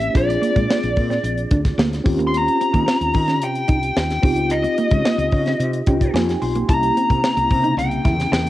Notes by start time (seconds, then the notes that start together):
Already playing: A#3 C#4 E4 G4 E5
0.02 closed hi-hat
0.14 A#1 C4 D4 F4 G#4 D5, kick, closed hi-hat
0.29 muted clean electric guitar stroke, closed hi-hat
0.42 A#3, closed hi-hat
0.56 A#2 G#3, kick, closed hi-hat
0.70 A#3, snare
0.83 A#1, closed hi-hat
0.96 A#2, muted clean electric guitar stroke, kick, open hi-hat
1.10 C4, snare, closed hi-hat
1.24 A#1, closed hi-hat
1.38 closed hi-hat
1.51 D2 D4, kick, closed hi-hat
1.65 kick, snare, closed hi-hat
1.78 D2 A#3, snare
1.93 snare, closed hi-hat
2.04 D#2 C4 C#4 F4 G4, muted clean electric guitar stroke, kick, open hi-hat
2.19 A#3, closed hi-hat
2.27 C6
2.34 A#5, closed hi-hat
2.47 muted clean electric guitar stroke, closed hi-hat
2.61 C4, closed hi-hat
2.73 D#3 A#3, kick, closed hi-hat
2.86 C4, snare
3.01 D#2, closed hi-hat
3.14 D#3, muted clean electric guitar stroke, kick, open hi-hat
3.28 C#4, snare, closed hi-hat
3.42 C3 G5, closed hi-hat
3.55 closed hi-hat
3.68 C2 D#4, kick, closed hi-hat
3.83 closed hi-hat
3.97 D#2 G5, snare
4.10 snare, closed hi-hat
4.22 C#2 C4 D#4 F4 G4, kick, open hi-hat
4.36 closed hi-hat
4.50 D#5, closed hi-hat
4.63 muted clean electric guitar stroke, closed hi-hat
4.78 A#3, closed hi-hat
4.91 C#3 G#3, kick, closed hi-hat
5.05 A#3, snare
5.18 C#2, closed hi-hat
5.31 C#3, muted clean electric guitar stroke, kick, open hi-hat
5.46 C4, snare, closed hi-hat
5.59 C3, closed hi-hat
5.73 closed hi-hat
5.86 C2 C4 C#4 D#4 F4 G4 G5, kick, closed hi-hat
6.01 kick, closed hi-hat
6.14 F2 A#3 G#5, snare
6.29 snare, closed hi-hat
6.42 B1 C6, muted clean electric guitar stroke, open hi-hat
6.55 A#3, closed hi-hat
6.67 C2 C3 C#3 A#3 C#4 E4 G4 A#5, kick, closed hi-hat
6.83 muted clean electric guitar stroke, closed hi-hat
6.97 C4, closed hi-hat
7.10 C3 A#3, kick, closed hi-hat
7.24 C4, snare
7.37 C2, closed hi-hat
7.50 C3, muted clean electric guitar stroke, kick, open hi-hat
7.64 D#4, closed hi-hat
7.77 C2 G5, closed hi-hat
7.91 closed hi-hat
8.05 E2 E4, kick, snare, closed hi-hat
8.20 snare, closed hi-hat
8.32 E2 G5, snare